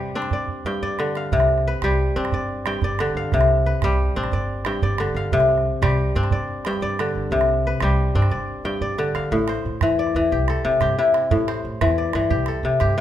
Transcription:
0.00 0.37 C3 medium
0.00 0.37 G3 medium
0.00 1.24 G4 medium
0.00 0.21 B4 medium
0.00 0.16 F5 medium
0.15 1.73 C4 medium
0.15 1.84 D4 medium
0.22 calabash click medium
0.31 0.82 D5 medium
0.31 calabash thump medium
0.48 calabash thump soft
0.65 1.38 G2 medium
0.65 1.59 G5 medium
0.65 calabash thump soft
0.82 1.93 D5 medium
0.82 calabash thump soft
0.99 1.38 D3 medium
0.99 calabash click medium
1.15 2.17 F5 medium
1.15 calabash click medium
1.32 1.70 C2 medium
1.32 2.38 C3 medium
1.32 calabash thump medium
1.32 calabash click soft
1.40 calabash click soft
1.48 calabash click soft
1.58 calabash click soft
1.67 2.22 B4 medium
1.82 2.08 C2 medium
1.82 2.38 G3 medium
1.82 3.25 G4 medium
1.82 calabash thump medium
1.82 calabash click medium
2.16 2.29 G2 medium
2.16 3.72 C4 medium
2.16 3.84 D4 medium
2.16 calabash click soft
2.25 calabash click medium
2.32 2.71 G1 medium
2.32 2.84 D5 medium
2.32 calabash thump medium
2.41 calabash click soft
2.66 3.38 G2 medium
2.66 3.60 G5 medium
2.66 calabash click medium
2.82 3.08 G1 medium
2.82 3.95 D5 medium
2.82 calabash thump medium
2.91 calabash click soft
2.99 3.38 D3 medium
2.99 calabash click medium
3.15 3.28 G1 medium
3.15 4.17 F5 medium
3.32 3.71 C2 medium
3.32 4.38 C3 medium
3.32 calabash thump medium
3.32 calabash click soft
3.41 calabash click soft
3.48 calabash click soft
3.57 calabash click soft
3.66 4.22 B4 medium
3.82 4.08 C2 loud
3.82 4.38 G3 medium
3.82 5.26 G4 medium
3.82 calabash thump medium
3.82 calabash click medium
4.16 4.29 A1 loud
4.16 5.96 C4 medium
4.16 5.85 D4 medium
4.16 calabash click soft
4.24 calabash click soft
4.32 4.70 G1 medium
4.32 4.83 D5 medium
4.32 calabash thump medium
4.40 calabash click soft
4.65 5.38 G2 medium
4.65 5.60 G5 medium
4.65 calabash click medium
4.82 5.08 G1 loud
4.82 5.94 D5 medium
4.82 calabash thump medium
4.91 calabash click soft
4.98 5.38 D3 medium
4.98 calabash click medium
5.14 5.28 G1 medium
5.14 6.16 F5 medium
5.32 5.70 C2 medium
5.32 6.37 C3 medium
5.32 calabash thump medium
5.32 calabash click soft
5.40 calabash click soft
5.49 calabash click soft
5.58 calabash click soft
5.82 6.07 C2 loud
5.82 6.37 G3 medium
5.82 7.24 G4 medium
5.82 calabash thump medium
5.82 calabash click medium
6.15 6.28 G2 loud
6.15 7.73 C4 medium
6.15 7.84 D4 medium
6.15 calabash click soft
6.24 calabash click medium
6.31 6.70 G1 medium
6.31 6.82 D5 medium
6.31 calabash thump medium
6.40 calabash click soft
6.65 7.37 G2 medium
6.65 7.59 G5 medium
6.65 calabash click medium
6.81 7.07 G1 medium
6.81 7.93 D5 medium
6.81 calabash thump medium
6.90 calabash click soft
6.99 7.37 D3 medium
6.99 calabash click medium
7.15 7.28 G1 medium
7.31 7.69 C2 medium
7.31 8.37 C3 medium
7.31 calabash thump medium
7.31 calabash click soft
7.41 calabash click medium
7.49 calabash click soft
7.65 8.21 B4 medium
7.65 calabash click soft
7.80 8.07 C2 medium
7.80 8.37 G3 medium
7.80 9.24 G4 medium
7.80 calabash thump medium
7.80 calabash click medium
8.15 8.28 G2 loud
8.15 9.95 C4 medium
8.15 9.84 D4 medium
8.22 calabash click soft
8.30 8.70 G1 medium
8.30 8.81 D5 medium
8.30 calabash thump medium
8.39 calabash click soft
8.48 calabash thump soft
8.64 9.37 G2 medium
8.64 9.58 G5 medium
8.64 calabash thump soft
8.81 9.07 G1 medium
8.81 9.92 D5 medium
8.81 calabash thump soft
8.98 9.37 D3 medium
8.98 calabash click soft
9.15 9.28 G1 medium
9.15 9.89 F5 medium
9.15 calabash click medium
9.31 9.57 A1 medium
9.31 10.37 A2 medium
9.31 calabash thump medium
9.48 10.68 C5 medium
9.48 calabash click medium
9.65 9.78 A2 medium
9.81 10.08 E2 medium
9.81 10.15 E3 medium
9.81 calabash thump medium
9.81 calabash click medium
9.99 11.10 D5 medium
10.07 calabash click soft
10.15 10.33 E2 medium
10.15 10.37 E3 medium
10.31 10.57 C2 medium
10.31 10.81 G4 medium
10.31 calabash thump medium
10.48 11.81 A4 medium
10.48 calabash click medium
10.65 10.97 C3 medium
10.65 10.78 C3 medium
10.81 10.94 G2 medium
10.81 12.23 G4 medium
10.81 calabash thump medium
10.81 calabash click medium
10.98 11.36 C3 medium
10.98 12.55 E4 medium
11.14 calabash click medium
11.31 11.57 A1 medium
11.31 12.36 A2 medium
11.31 calabash thump medium
11.48 12.67 C5 medium
11.48 calabash click medium
11.65 11.77 A2 medium
11.81 12.07 E2 medium
11.81 12.14 E3 medium
11.81 calabash thump medium
11.81 calabash click medium
11.98 13.01 D5 medium
12.06 calabash click soft
12.13 12.32 G2 medium
12.13 12.36 E3 medium
12.13 calabash click medium
12.30 12.56 C2 medium
12.30 12.80 G4 medium
12.30 calabash thump medium
12.46 13.01 A4 medium
12.46 calabash click medium
12.63 12.76 C3 medium
12.63 12.96 C3 medium
12.80 12.94 G2 medium
12.80 13.01 G4 medium
12.80 calabash thump medium
12.80 calabash click medium

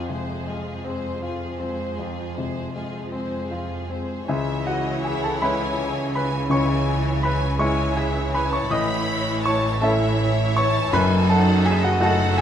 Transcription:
0.00 1.94 F2 soft
0.00 4.03 F2 soft
0.00 1.21 F4 soft
0.00 3.09 F5 soft
0.10 0.70 C3 soft
0.10 0.48 G#3 soft
0.10 0.47 G#4 soft
0.10 0.49 C5 soft
0.47 0.85 F3 soft
0.47 1.08 G#3 soft
0.47 0.86 F4 soft
0.47 0.87 G#4 soft
0.85 1.23 G#3 soft
0.85 1.45 C4 soft
0.85 1.23 G#4 soft
0.85 1.24 C5 soft
1.22 1.58 F3 soft
1.22 1.83 F4 soft
1.22 1.58 F4 soft
1.22 1.59 G#4 soft
1.60 1.99 G#3 soft
1.60 2.21 C4 soft
1.60 1.99 G#4 soft
1.60 1.98 C5 soft
1.99 4.25 F2 soft
1.99 2.37 F3 soft
1.99 2.37 F4 soft
1.99 2.37 G#4 soft
2.36 2.98 C3 soft
2.36 2.74 G#3 soft
2.36 2.75 G#4 soft
2.36 2.74 C5 soft
2.74 3.10 F3 soft
2.74 3.36 G#3 soft
2.74 3.10 F4 soft
2.74 3.10 G#4 soft
3.12 3.51 G#3 soft
3.12 3.74 C4 soft
3.12 3.51 G#4 soft
3.12 3.51 C5 soft
3.50 3.89 F3 soft
3.50 4.13 F4 soft
3.50 3.90 F4 soft
3.50 3.90 G#4 soft
3.89 4.28 G#3 soft
3.89 4.28 C4 soft
3.89 4.28 G#4 soft
3.89 4.29 C5 soft
4.28 8.67 C#2 soft
4.28 6.48 C#2 medium
4.28 8.67 C#3 soft
4.28 6.48 C#3 soft
4.28 6.48 E3 soft
4.28 6.48 E4 medium
4.28 4.65 G#4 soft
4.28 6.48 C#5 soft
4.28 4.64 E5 medium
4.28 4.64 E5 soft
4.28 4.64 G#5 medium
4.66 5.02 F#4 soft
4.66 5.04 D#5 soft
4.66 5.02 F#5 medium
5.04 5.23 G#4 soft
5.04 5.23 E5 medium
5.04 5.22 G#5 medium
5.23 5.42 A4 soft
5.23 5.42 F#5 soft
5.23 5.41 A5 medium
5.42 6.48 G#3 soft
5.42 6.48 C#4 soft
5.42 6.48 E4 soft
5.42 6.12 B4 soft
5.42 6.14 G#5 medium
5.42 6.11 B5 medium
6.15 6.50 B4 soft
6.15 6.50 G#5 medium
6.15 6.49 B5 medium
6.49 8.66 C#2 soft
6.49 8.66 C#3 medium
6.49 7.58 E3 soft
6.49 7.58 E4 soft
6.49 7.58 C#5 soft
6.49 7.21 C#5 soft
6.49 7.23 G#5 medium
6.49 7.21 G#5 soft
6.49 7.20 C#6 medium
7.23 7.58 B4 medium
7.23 7.58 G#5 medium
7.23 7.57 B5 medium
7.59 8.68 E3 medium
7.59 8.66 G#3 soft
7.59 8.67 C#4 soft
7.59 8.67 E4 medium
7.59 8.69 E4 medium
7.59 7.95 C#5 medium
7.59 8.70 C#5 medium
7.59 7.96 G#5 medium
7.59 7.95 G#5 medium
7.59 7.94 C#6 medium
7.97 8.31 G#4 soft
7.97 8.34 E5 medium
7.97 8.31 G#5 medium
8.32 8.52 B4 soft
8.32 8.51 G#5 medium
8.32 8.51 B5 medium
8.51 8.70 C#5 soft
8.51 8.70 A5 medium
8.51 8.70 C#6 medium
8.69 10.88 A1 medium
8.69 10.92 A1 medium
8.69 10.92 A2 medium
8.69 10.88 A2 medium
8.69 9.80 E3 medium
8.69 9.80 E4 medium
8.69 9.80 C#5 medium
8.69 9.41 D#5 medium
8.69 9.44 B5 medium
8.69 9.41 D#6 medium
9.43 9.80 C#5 medium
9.43 9.80 A5 medium
9.43 9.80 C#6 medium
9.80 10.91 E3 medium
9.80 10.88 A3 medium
9.80 10.88 C#4 soft
9.80 10.90 E4 medium
9.80 10.89 E4 medium
9.80 10.52 A4 medium
9.80 10.90 C#5 medium
9.80 10.54 E5 medium
9.80 10.52 A5 medium
9.84 10.53 E5 medium
10.56 10.91 C#5 medium
10.56 10.92 A5 medium
10.56 10.90 C#6 medium
10.92 12.41 F#1 medium
10.92 12.41 F#2 medium
10.92 12.01 F#3 medium
10.92 12.00 D#4 medium
10.92 11.99 A4 medium
10.92 11.27 B4 medium
10.92 11.28 G#5 medium
10.92 11.26 B5 medium
11.28 11.63 A4 medium
11.28 11.64 F#5 medium
11.28 11.62 A5 medium
11.64 11.82 G#4 medium
11.64 11.82 E5 medium
11.64 11.82 G#5 medium
11.82 12.00 F#4 medium
11.82 12.00 D#5 medium
11.82 12.00 F#5 medium
12.00 12.41 F#3 medium
12.00 12.41 A3 medium
12.00 12.41 D#4 medium
12.00 12.41 F#4 medium
12.00 12.41 A4 medium
12.00 12.35 A4 medium
12.00 12.36 F#5 medium
12.00 12.35 A5 medium
12.04 12.35 F#5 medium
12.35 12.41 E5 medium
12.35 12.41 G#5 medium

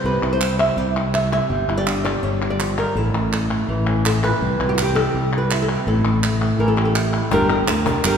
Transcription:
0.00 0.19 C2 medium
0.00 0.41 G3 medium
0.00 0.23 E4 soft
0.00 0.31 C5 medium
0.04 1.48 C3 medium
0.04 0.69 B4 medium
0.22 0.68 C2 medium
0.22 0.95 E4 soft
0.22 clap soft
0.33 0.59 C5 medium
0.41 0.76 G3 medium
0.41 clap medium
0.59 0.78 E5 medium
0.59 clap soft
0.77 1.38 C2 medium
0.77 1.48 G3 medium
0.77 1.13 D5 loud
0.96 1.48 E4 soft
0.96 clap soft
1.14 1.31 E5 medium
1.14 clap medium
1.33 1.77 E5 medium
1.33 clap soft
1.50 1.65 G1 medium
1.50 2.77 G3 medium
1.68 2.14 G1 medium
1.68 1.77 E4 soft
1.68 clap soft
1.77 2.41 G4 soft
1.77 2.03 D5 medium
1.87 2.94 D4 medium
1.87 clap medium
2.05 2.23 D5 medium
2.05 clap soft
2.23 2.84 G1 medium
2.23 2.59 D3 medium
2.23 2.50 C#5 medium
2.42 2.94 G4 soft
2.42 clap soft
2.50 2.77 D5 medium
2.60 2.78 F3 medium
2.60 clap medium
2.78 2.96 G3 medium
2.78 2.97 A#4 medium
2.78 clap soft
2.95 3.11 A1 medium
2.95 4.04 A2 medium
2.95 3.87 A4 medium
3.14 3.60 A1 medium
3.14 clap soft
3.32 4.39 A3 soft
3.32 clap medium
3.51 clap soft
3.68 4.30 A1 medium
3.68 4.77 E3 medium
3.87 4.39 C#4 soft
3.87 clap soft
4.05 4.23 A2 medium
4.05 4.24 A4 medium
4.05 clap medium
4.23 4.41 A#2 medium
4.23 4.95 B4 loud
4.23 clap soft
4.41 4.56 C2 medium
4.41 5.85 C3 medium
4.60 5.06 C2 medium
4.60 5.50 E4 soft
4.60 clap soft
4.69 4.74 G4 medium
4.74 5.13 G3 medium
4.74 4.82 F#4 medium
4.74 clap medium
4.82 5.32 G4 medium
4.95 5.37 A4 loud
4.95 clap soft
5.14 5.76 C2 medium
5.14 5.85 G3 medium
5.33 clap soft
5.38 5.62 B4 medium
5.51 5.68 E4 soft
5.51 clap medium
5.62 5.87 A4 medium
5.69 5.85 E4 soft
5.69 clap soft
5.75 5.87 G4 medium
5.87 6.02 A1 medium
5.87 7.32 A2 medium
5.87 6.67 A4 medium
6.05 6.51 A1 medium
6.05 clap soft
6.23 7.30 A3 medium
6.23 clap medium
6.42 6.95 E4 soft
6.42 clap soft
6.59 7.21 A1 medium
6.59 7.30 E3 medium
6.59 6.69 A#4 medium
6.68 6.84 A4 medium
6.77 7.22 G4 medium
6.77 clap soft
6.85 7.31 A4 medium
6.95 7.30 E4 soft
6.95 clap medium
7.13 clap soft
7.31 7.63 G1 medium
7.31 7.49 G3 medium
7.31 7.50 D4 medium
7.31 7.50 G4 medium
7.31 7.49 A#4 medium
7.31 cajon bass loud
7.31 cajon slap soft
7.31 clap soft
7.50 7.66 D4 soft
7.50 7.66 G4 medium
7.50 7.67 A#4 medium
7.50 clap medium
7.67 7.84 D2 medium
7.67 muted nylon-string guitar stroke medium
7.67 cajon slap loud
7.67 clap medium
7.85 8.04 D4 soft
7.85 8.04 G4 soft
7.85 8.03 A#4 medium
7.85 cajon bass medium
7.85 clap soft
8.04 8.17 G1 loud
8.04 8.17 G3 medium
8.04 8.17 D4 medium
8.04 8.17 G4 medium
8.04 8.17 A#4 medium
8.04 clap medium

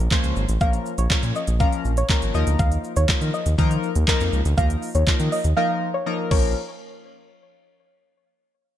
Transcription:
0.11 0.43 F3 medium
0.11 0.43 A#3 medium
0.11 0.43 C#4 medium
0.11 0.43 C5 loud
0.11 kick loud
0.11 clap loud
0.11 shaker medium
0.24 0.33 C#2 medium
0.24 closed hi-hat medium
0.24 shaker medium
0.36 0.45 G#1 medium
0.36 shaker medium
0.49 0.58 A1 medium
0.49 closed hi-hat medium
0.49 shaker medium
0.61 0.79 A#1 loud
0.61 0.92 F3 medium
0.61 0.92 A#3 medium
0.61 0.93 C#4 medium
0.61 0.93 A#4 medium
0.61 0.71 F5 loud
0.61 kick loud
0.61 shaker medium
0.73 closed hi-hat medium
0.73 shaker medium
0.86 shaker medium
0.98 1.07 A#1 loud
0.98 1.17 C#5 medium
0.98 closed hi-hat medium
0.98 shaker medium
1.10 1.16 A#2 soft
1.10 1.42 F3 medium
1.10 1.42 A#3 medium
1.10 1.42 C#4 medium
1.10 1.42 C#5 medium
1.10 kick loud
1.10 clap loud
1.10 shaker medium
1.23 1.32 A#2 loud
1.23 closed hi-hat medium
1.23 shaker medium
1.35 1.45 D#5 medium
1.35 shaker medium
1.47 1.66 A#1 medium
1.47 closed hi-hat medium
1.47 shaker medium
1.60 1.91 F3 medium
1.60 1.91 A#3 medium
1.60 1.92 C#4 medium
1.60 1.92 A#4 medium
1.60 1.70 F5 medium
1.60 kick loud
1.60 shaker medium
1.73 closed hi-hat medium
1.73 shaker medium
1.85 2.03 A#1 loud
1.85 shaker medium
1.97 2.07 C#5 medium
1.97 closed hi-hat medium
1.97 shaker medium
2.09 2.33 F3 medium
2.09 2.33 A#3 medium
2.09 2.34 C#4 medium
2.09 2.33 A#4 medium
2.09 kick loud
2.09 clap loud
2.09 shaker medium
2.22 2.31 G#1 medium
2.22 closed hi-hat medium
2.22 shaker medium
2.34 2.44 D#2 loud
2.34 2.94 F3 medium
2.34 2.94 A#3 medium
2.34 2.94 D#4 medium
2.34 2.94 A#4 medium
2.34 2.44 D#5 medium
2.34 shaker medium
2.47 2.56 D2 medium
2.47 closed hi-hat medium
2.47 shaker medium
2.59 2.78 D#2 loud
2.59 2.69 F5 loud
2.59 kick loud
2.59 shaker medium
2.72 closed hi-hat medium
2.72 shaker medium
2.84 shaker medium
2.96 3.06 D#2 loud
2.96 3.16 C#5 medium
2.96 closed hi-hat medium
2.96 shaker medium
3.08 3.14 D#3 soft
3.08 3.40 F3 medium
3.08 3.40 A#3 medium
3.08 3.40 D#4 medium
3.08 3.40 A#4 medium
3.08 kick loud
3.08 clap loud
3.08 shaker medium
3.21 3.30 D#3 medium
3.21 closed hi-hat medium
3.21 shaker medium
3.34 3.43 D#5 medium
3.34 shaker medium
3.46 3.55 D#2 medium
3.46 closed hi-hat medium
3.46 shaker medium
3.58 3.77 D#3 loud
3.58 3.90 F3 loud
3.58 3.90 A#3 medium
3.58 3.90 D#4 medium
3.58 3.90 A#4 loud
3.58 kick loud
3.58 shaker medium
3.71 closed hi-hat medium
3.71 shaker medium
3.83 shaker medium
3.96 4.05 D#2 loud
3.96 closed hi-hat medium
3.96 shaker medium
4.08 4.39 F3 medium
4.08 4.39 A#3 medium
4.08 4.39 D#4 medium
4.08 4.40 A#4 loud
4.08 kick loud
4.08 clap loud
4.08 shaker medium
4.20 4.30 F2 medium
4.20 closed hi-hat medium
4.20 shaker medium
4.33 4.42 C#2 medium
4.33 shaker medium
4.45 4.55 D2 medium
4.45 closed hi-hat medium
4.45 shaker medium
4.57 4.76 D#2 loud
4.57 4.89 F3 medium
4.57 4.89 A#3 medium
4.57 4.89 D#4 medium
4.57 4.89 A#4 medium
4.57 4.67 F5 loud
4.57 kick loud
4.57 shaker medium
4.70 closed hi-hat medium
4.70 shaker medium
4.82 open hi-hat medium
4.82 shaker medium
4.95 5.04 D#2 loud
4.95 5.14 C#5 medium
4.95 closed hi-hat medium
4.95 shaker medium
5.07 5.12 D#3 soft
5.07 5.38 F3 medium
5.07 5.39 A#3 medium
5.07 5.39 D#4 medium
5.07 5.39 A#4 medium
5.07 kick loud
5.07 clap loud
5.07 shaker medium
5.20 5.29 D#3 loud
5.20 closed hi-hat medium
5.20 shaker medium
5.32 5.42 D#5 medium
5.32 open hi-hat medium
5.32 shaker medium
5.44 5.54 D#2 medium
5.44 closed hi-hat medium
5.44 shaker medium
5.56 5.88 F3 medium
5.56 5.88 A#3 medium
5.56 5.88 D#4 medium
5.56 5.88 A#4 loud
5.56 5.66 F5 medium
5.94 6.04 C#5 medium
6.06 6.30 F3 medium
6.06 6.30 A#3 medium
6.06 6.31 D#4 medium
6.06 6.30 A#4 medium
6.31 6.54 A#1 loud
6.31 6.54 F3 medium
6.31 6.54 A#3 medium
6.31 6.54 C#4 medium
6.31 6.54 A#4 medium
6.31 6.54 C#5 medium
6.31 kick loud
6.31 crash medium

